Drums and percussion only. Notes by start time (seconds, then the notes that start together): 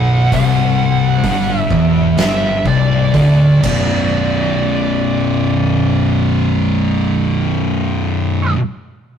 0.32 kick, open hi-hat
1.24 kick, open hi-hat
1.71 kick
2.18 snare, open hi-hat
2.66 kick
3.14 kick, open hi-hat
3.63 kick, crash